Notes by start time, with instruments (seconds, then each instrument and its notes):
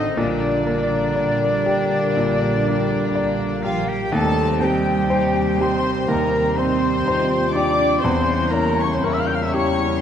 Already playing: grand piano A2 C4 A4 D5, trombone section D3 A3, cello section D#3, french horn section C4 A4, violin section C4 D#5, viola section D#4, oboe D#4, flute D#5
0.17 double bass section A#1, grand piano A#2, cello section D3, trombone section G3, french horn section A#3 A#4, violin section A#3 D5, oboe D4, viola section D4, flute D5
0.67 grand piano A#3, violin section A#3
1.16 double bass section A#1, grand piano D5
1.66 violin section A#3, grand piano G4
2.17 double bass section A#1, grand piano A#2
2.68 grand piano A#3, violin section A#3
3.15 double bass section A#1, grand piano D5
3.62 cello section F3, violin section A#3 F5, oboe F4, viola section F4, grand piano G4, flute F5
3.87 cello section G3, oboe G4, viola section G4, violin section G5, flute G5
4.11 grand piano D#2, double bass section D#2, trombone section C3 G3, cello section A3, french horn section C4 G4, violin section D#4 A5, viola section A4, oboe A4, flute A5
4.35 violin section C4
4.58 cello section G3, grand piano C4, violin section D#4 G5, viola section G4, oboe G4
4.63 flute G5
4.86 violin section C4
5.10 double bass section D#2, violin section D#4, grand piano C5
5.34 violin section C4
5.60 cello section C4, violin section D#4 C6, grand piano G4, oboe C5, viola section C5, flute C6
5.84 violin section C4
6.08 grand piano D#2, double bass section D#2, cello section A#3, violin section D#4 A#5, oboe A#4, viola section A#4, flute A#5
6.32 violin section C4
6.56 cello section C4, grand piano C4, violin section D#4 C6, oboe C5, viola section C5, flute C6
6.81 violin section C4
7.05 double bass section D#2, violin section D#4, french horn section F4, grand piano C5
7.29 violin section C4
7.51 cello section D4, violin section D#4 D6, oboe D5, viola section D5, flute D6
7.56 grand piano G4
7.76 violin section C4
7.99 double bass section E2, trombone section C#3 G3, french horn section A#3 E4, cello section C4, violin section E4 C6, viola section C5, oboe C5, flute C6
8.04 grand piano E2
8.26 violin section C#4
8.49 cello section A#3, violin section E4 A#5, oboe A#4, viola section A#4
8.53 grand piano C#4, flute A#5
8.75 violin section C#4 C#6
8.81 cello section C#4, oboe C#5, viola section C#5, flute C#6
8.91 oboe C5, violin section C6, flute C6
8.96 cello section C4, viola section C5
9.01 double bass section E2, violin section E4 C#6, grand piano A#4, oboe C#5
9.06 cello section C#4, viola section C#5, flute C#6
9.12 cello section E4, viola section E5, oboe E5, violin section E6 F6, flute E6
9.19 cello section F4, viola section F5, oboe F5, flute F6
9.24 violin section C#4 G6, oboe G5, viola section G5, flute G6
9.28 cello section G4
9.33 cello section F4, viola section F5, oboe F5, violin section F6, flute F6
9.42 cello section E4, oboe E5, viola section E5, violin section E6, flute E6
9.49 cello section C#4, violin section E4 C#6, oboe C#5
9.54 grand piano G4, viola section C#5, flute C#6
9.77 violin section C#4